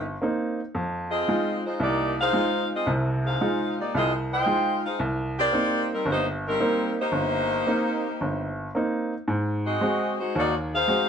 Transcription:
0.00 0.14 G1 medium
0.22 0.59 A#3 soft
0.22 0.59 C4 soft
0.22 0.60 D#4 medium
0.75 1.21 F2 medium
1.10 1.60 C4 medium
1.10 1.60 F4 medium
1.10 1.60 G#4 medium
1.10 1.60 D#5 medium
1.28 1.66 G#3 soft
1.28 1.65 D#4 soft
1.28 1.66 F4 medium
1.65 1.81 G#3 medium
1.65 1.80 D#4 medium
1.65 1.81 F4 medium
1.65 1.80 C5 medium
1.80 2.27 C2 medium
1.80 2.15 A#3 medium
1.80 2.15 D#4 medium
1.80 2.15 G4 medium
1.80 2.15 D5 medium
2.21 2.68 D#4 medium
2.21 2.68 G#4 medium
2.21 2.68 C5 loud
2.21 2.69 F5 loud
2.33 2.71 G#3 soft
2.33 2.71 D#4 soft
2.33 2.72 F4 medium
2.75 2.89 C4 medium
2.75 2.90 F4 medium
2.75 2.90 G#4 medium
2.75 2.90 D#5 medium
2.86 3.33 C2 medium
2.86 3.33 C3 medium
3.26 3.74 D#4 medium
3.26 3.74 G#4 medium
3.26 3.75 C5 medium
3.26 3.74 F5 medium
3.41 3.79 G#3 soft
3.41 3.79 D#4 soft
3.41 3.79 F4 medium
3.79 3.94 A#3 medium
3.79 3.94 D#4 medium
3.79 3.94 G4 medium
3.79 3.94 D5 medium
3.95 4.41 C2 medium
3.95 4.12 C4 medium
3.95 4.13 F4 medium
3.95 4.12 G#4 medium
3.95 4.12 D#5 medium
4.32 4.81 F4 medium
4.32 4.81 C5 loud
4.32 4.81 D#5 medium
4.32 4.81 G5 loud
4.46 4.84 G#3 soft
4.46 4.85 D#4 soft
4.46 4.85 F4 medium
4.85 5.00 D#4 medium
4.85 5.01 G#4 medium
4.85 5.01 C5 medium
4.85 5.00 F5 medium
4.99 5.46 C2 medium
5.39 5.87 C4 medium
5.39 5.88 G4 medium
5.39 5.87 A#4 medium
5.39 5.87 D5 loud
5.53 5.91 A#3 soft
5.53 5.91 C4 soft
5.53 5.92 D#4 medium
5.93 6.08 G3 medium
5.93 6.08 C4 medium
5.93 6.08 D#4 medium
5.93 6.08 A#4 medium
6.06 6.53 G1 medium
6.11 6.27 A#3 medium
6.11 6.27 D#4 medium
6.11 6.27 G4 medium
6.11 6.26 C5 medium
6.47 6.95 G3 medium
6.47 6.95 C4 medium
6.47 6.95 D#4 medium
6.47 6.95 A#4 medium
6.60 6.98 A#3 soft
6.60 6.98 C4 soft
6.60 6.98 D#4 medium
7.01 8.72 A#3 medium
7.01 8.72 D#4 medium
7.01 8.72 G4 medium
7.01 8.72 C5 loud
7.12 7.59 G1 medium
7.67 8.05 A#3 soft
7.67 8.05 C4 soft
7.67 8.05 D#4 medium
8.21 8.67 G1 medium
8.75 9.12 A#3 soft
8.75 9.12 C4 soft
8.75 9.13 D#4 medium
9.28 9.74 G#2 medium
9.66 10.14 C4 medium
9.66 10.14 F#4 medium
9.66 10.14 G#4 medium
9.66 10.14 D#5 medium
9.81 10.19 G#3 medium
9.81 10.19 C4 soft
9.81 10.19 F#4 medium
10.19 10.35 G#3 medium
10.19 10.36 D#4 medium
10.19 10.36 F#4 medium
10.19 10.36 C5 medium
10.35 10.81 D#2 medium
10.35 10.53 A#3 medium
10.35 10.54 D#4 medium
10.35 10.54 F#4 medium
10.35 10.54 D5 medium
10.74 11.09 D#4 medium
10.74 11.09 G#4 medium
10.74 11.09 C5 medium
10.74 11.09 F5 loud
10.88 11.09 G#3 soft
10.88 11.09 C4 soft
10.88 11.09 F#4 soft

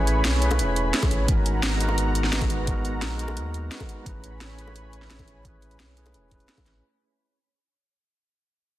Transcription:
0.00 0.26 A1 loud
0.00 0.39 A3 medium
0.00 0.40 C#4 medium
0.00 0.42 E4 medium
0.00 0.44 G#4 medium
0.00 0.45 B4 loud
0.00 0.96 C#5 medium
0.00 1.26 C#5 medium
0.00 1.26 G#5 medium
0.00 1.26 B5 medium
0.07 closed hi-hat medium
0.25 0.61 B1 loud
0.25 snare loud
0.25 closed hi-hat medium
0.39 0.91 A3 medium
0.39 0.91 C#4 medium
0.39 0.92 E4 medium
0.39 closed hi-hat medium
0.44 0.93 G#4 medium
0.44 0.94 B4 medium
0.51 closed hi-hat soft
0.51 high bongo medium
0.59 0.93 E1 medium
0.59 closed hi-hat medium
0.76 closed hi-hat medium
0.92 1.26 A3 medium
0.92 1.26 C#4 medium
0.92 1.27 E4 medium
0.92 1.27 G#4 medium
0.92 1.27 C#5 medium
0.92 snare loud
0.92 closed hi-hat medium
1.03 kick loud
1.03 closed hi-hat soft
1.03 high bongo medium
1.11 1.27 A1 medium
1.11 closed hi-hat medium
1.25 3.04 G#1 medium
1.25 1.76 G#3 medium
1.25 1.78 B3 medium
1.25 4.03 B3 medium
1.25 1.79 D#4 medium
1.25 4.03 F#5 medium
1.25 4.03 A#5 medium
1.25 kick loud
1.25 closed hi-hat medium
1.30 1.79 F#4 medium
1.30 1.80 A#4 medium
1.46 closed hi-hat medium
1.63 snare loud
1.63 closed hi-hat medium
1.77 2.29 G#3 medium
1.77 2.30 B3 medium
1.77 2.31 D#4 medium
1.77 closed hi-hat medium
1.82 2.32 F#4 medium
1.82 2.33 A#4 medium
1.89 high bongo medium
1.98 closed hi-hat medium
2.15 closed hi-hat medium
2.24 snare soft
2.31 2.63 G#3 medium
2.31 2.65 B3 medium
2.31 2.65 D#4 medium
2.31 2.66 F#4 medium
2.31 2.66 B4 medium
2.31 snare loud
2.31 closed hi-hat medium
2.41 kick loud
2.41 closed hi-hat soft
2.41 high bongo medium
2.50 closed hi-hat medium
2.64 3.15 G#3 medium
2.64 3.16 B3 medium
2.64 3.17 D#4 medium
2.64 kick loud
2.64 closed hi-hat medium
2.69 3.18 F#4 medium
2.69 3.19 A#4 medium
2.85 closed hi-hat medium
3.02 3.38 A#1 loud
3.02 snare loud
3.02 closed hi-hat medium
3.16 3.68 G#3 medium
3.16 3.69 B3 medium
3.16 3.70 D#4 medium
3.16 closed hi-hat medium
3.21 3.71 F#4 medium
3.21 3.71 A#4 medium
3.28 high bongo medium
3.37 3.70 D#2 medium
3.37 closed hi-hat medium
3.54 closed hi-hat medium
3.70 4.03 G#3 medium
3.70 4.04 B3 medium
3.70 4.04 D#4 medium
3.70 4.04 F#4 medium
3.70 4.05 B4 medium
3.70 snare loud
3.70 closed hi-hat medium
3.80 kick medium
3.80 closed hi-hat soft
3.80 high bongo medium
3.89 closed hi-hat medium
4.03 5.81 A1 medium
4.03 4.54 A3 medium
4.03 4.55 C#4 medium
4.03 4.56 E4 medium
4.03 6.81 C#5 medium
4.03 6.81 G#5 medium
4.03 6.81 B5 medium
4.03 kick loud
4.03 closed hi-hat medium
4.08 4.57 G#4 medium
4.08 4.58 B4 medium
4.24 closed hi-hat medium
4.41 snare loud
4.41 closed hi-hat medium
4.55 5.07 A3 medium
4.55 5.08 C#4 medium
4.55 5.08 E4 medium
4.55 closed hi-hat medium
4.60 5.09 G#4 medium
4.60 5.10 B4 medium
4.67 high bongo medium
4.76 closed hi-hat medium
4.93 closed hi-hat medium
5.02 snare soft
5.09 5.40 A3 medium
5.09 5.42 C#4 medium
5.09 5.43 E4 medium
5.09 5.43 G#4 medium
5.09 5.44 C#5 medium
5.09 snare loud
5.09 closed hi-hat medium
5.19 kick loud
5.19 closed hi-hat soft
5.19 high bongo medium
5.28 closed hi-hat medium
5.41 5.93 A3 medium
5.41 5.94 C#4 medium
5.41 5.95 E4 medium
5.41 kick loud
5.41 closed hi-hat medium
5.46 5.96 G#4 medium
5.46 5.96 B4 medium
5.62 closed hi-hat medium
5.71 closed hi-hat soft
5.79 6.16 B1 medium
5.79 snare loud
5.79 closed hi-hat medium
5.95 6.27 A3 medium
5.95 6.29 C#4 medium
5.95 6.30 E4 medium
5.95 6.30 G#4 medium
5.95 6.31 B4 medium
5.95 closed hi-hat medium
6.06 closed hi-hat soft
6.06 high bongo medium
6.14 6.47 E1 medium
6.14 closed hi-hat medium
6.28 6.80 A3 medium
6.28 6.81 C#4 medium
6.28 6.81 E4 medium
6.28 kick medium
6.28 closed hi-hat medium
6.33 6.82 G#4 medium
6.33 6.83 B4 medium
6.40 closed hi-hat soft
6.49 snare loud
6.49 closed hi-hat medium
6.58 kick medium
6.58 closed hi-hat soft
6.58 high bongo medium
6.66 6.82 A1 medium
6.66 snare soft
6.66 closed hi-hat medium

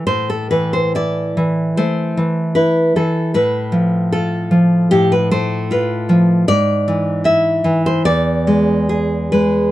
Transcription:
0.07 1.73 A2 medium
0.07 0.28 C5 medium
0.30 0.50 A4 medium
0.51 1.36 E3 medium
0.51 0.72 B4 medium
0.73 0.95 C5 medium
0.95 2.17 E4 soft
0.95 1.74 D5 medium
1.37 2.16 E3 soft
1.77 2.97 A3 soft
1.77 2.54 C5 medium
2.17 2.95 E3 medium
2.55 3.35 E4 medium
2.55 2.94 B4 medium
2.96 3.36 E3 soft
2.96 3.34 A4 medium
3.34 4.87 A2 medium
3.34 4.10 B4 medium
3.72 4.50 F3 medium
4.12 5.32 F4 soft
4.12 4.88 A4 medium
4.51 5.72 F3 medium
4.91 6.45 A2 medium
4.91 5.12 G4 medium
5.12 5.31 B4 medium
5.31 6.49 A3 medium
5.31 5.70 C5 medium
5.71 6.48 F4 medium
5.71 6.46 B4 medium
6.09 6.47 F3 medium
6.48 7.99 G#2 medium
6.48 7.22 D5 medium
6.88 7.63 E3 medium
7.24 8.03 E4 medium
7.24 7.81 E5 medium
7.64 8.04 E3 medium
7.86 8.05 C5 medium
8.05 9.71 E2 medium
8.05 9.28 D5 loud
8.47 9.31 G#3 medium
8.89 9.71 G#4 medium
9.32 9.71 G#3 soft
9.32 9.71 B4 medium

